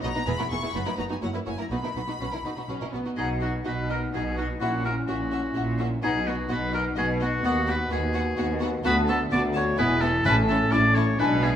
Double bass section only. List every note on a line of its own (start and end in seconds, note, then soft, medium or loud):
0.04 0.09 B1 soft
0.28 0.32 E1 medium
0.51 0.56 E1 soft
0.75 0.79 F#1 medium
0.99 1.04 F#1 soft
1.23 1.28 F#1 soft
1.47 1.52 F#1 soft
1.71 1.76 B1 soft
1.96 2.01 B1 soft
2.21 2.26 B1 soft
2.45 2.50 B1 soft
2.69 2.74 B1 soft
2.94 2.99 B1 soft
3.18 3.61 B1 soft
3.67 4.09 B1 soft
4.14 4.56 B1 soft
4.62 5.03 A#1 medium
5.08 5.50 A#1 soft
5.56 5.98 A#1 medium
6.03 6.45 B1 medium
6.50 6.92 B1 medium
6.97 7.38 B1 medium
7.44 7.85 D#2 medium
7.91 8.32 D#2 medium
8.38 8.80 D#2 medium
8.85 9.27 D2 medium
9.32 9.73 D2 medium
9.79 10.20 E1 medium
10.26 10.67 A1 medium
10.72 11.14 A1 medium
11.20 11.56 B1 medium